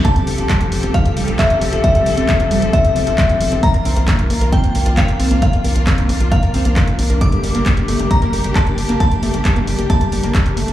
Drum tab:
HH |xxoxxxoxxxoxxxox|xxoxxxoxxxoxxxox|xxoxxxoxxxoxxxox|xxoxxxoxxxoxxxox|
CP |----x-------x---|----x-------x---|----x-------x---|----x-------x---|
BD |o---o---o---o---|o---o---o---o---|o---o---o---o---|o---o---o---o---|

HH |xxoxxxoxxxoxxxox|xxoxxxoxxxoxxxox|
CP |----x-------x---|----x-------x---|
BD |o---o---o---o---|o---o---o---o---|